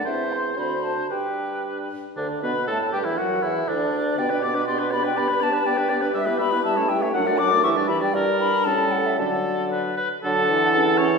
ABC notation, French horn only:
X:1
M:2/4
L:1/16
Q:1/4=119
K:G
V:1 name="French horn"
C4 D4 | D6 z2 | D,2 B,2 A,2 G, E, | F,2 E,2 D,4 |
B, D B, D B, D B, D | B, D B, D B, D B, D | [K:D] G, B, G, B, G, A, G, A, | F, A, F, A, E, G, E, G, |
G,4 G,4 | F,6 z2 | F,2 E,6 |]